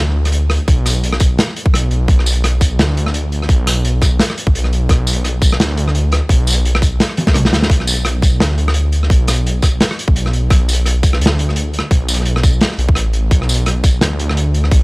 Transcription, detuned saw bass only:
Already playing: D2
0.68 B1
1.73 B1
1.91 B1
2.08 B1
2.79 D2
3.49 B1
4.47 A1
4.54 B1
4.89 B1
5.59 D2
6.29 B1
7.35 B1
7.52 D2
7.70 B1
8.40 D2
9.10 B1
10.08 A1
10.16 B1
10.50 B1
11.21 D2
11.91 B1
12.78 B1
12.96 A1
13.31 B1
14.02 D2
14.71 B1

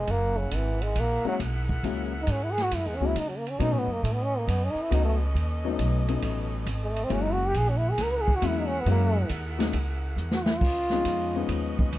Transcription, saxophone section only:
0.09 E4 G#4 A#4 F#5
3.58 C#4 A4 B4 D#5
7.10 E4 G#4 A#4 F#5
10.63 C#4 F4 B4 D#5

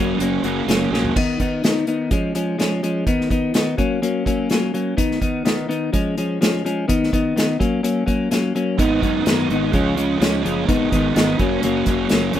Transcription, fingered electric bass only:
Already playing: F#1
0.19 F#1
0.43 F#1
0.67 F#1
0.91 A#1
8.78 G#1
9.02 F#2
9.26 F#2
9.49 G#1
9.74 C#2
10.20 C#2
10.45 F#1
10.69 G#1
10.92 G#1
11.16 G#1
11.39 F#1
11.63 F#1
11.87 F#1
12.11 F#1
12.34 F#1

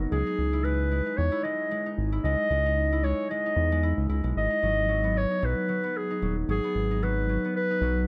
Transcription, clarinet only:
0.11 G#4
0.64 B4
1.17 C#5
1.44 D#5
2.24 D#5
3.04 C#5
3.30 D#5
4.38 D#5
5.17 C#5
5.45 B4
5.97 G#4
6.50 G#4
7.03 B4
7.56 B4

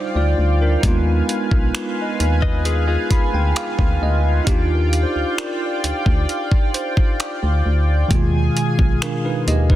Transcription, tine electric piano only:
Already playing: G3 D#4 C5
0.16 F4 D5
0.62 D4 A#4
0.81 G#3 D#4
0.86 B3 F4
3.11 B5
3.34 G5
3.57 F5
4.03 D#5
4.45 D#4 G4
4.49 D4 F4
8.08 D#3 G#3
8.13 B2 F4
9.03 D4 A#4
9.25 D#4 B4
9.48 G4 D#5
9.71 D#4 B4

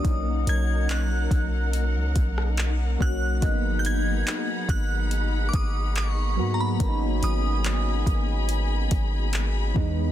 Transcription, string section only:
0.04 D#4 A#4 F#5
3.42 G#4 F#5 B5
6.80 G#5
9.76 C#4 B4

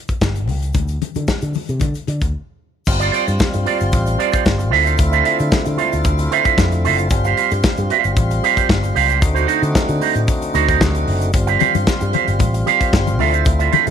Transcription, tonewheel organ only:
2.87 G3 C4 F4
4.73 D3 A3 C4 E4
7.11 G3 C4
9.22 D3 A3 D#4 F#4
11.35 G3 C4 F4
13.20 D3 A3 E4

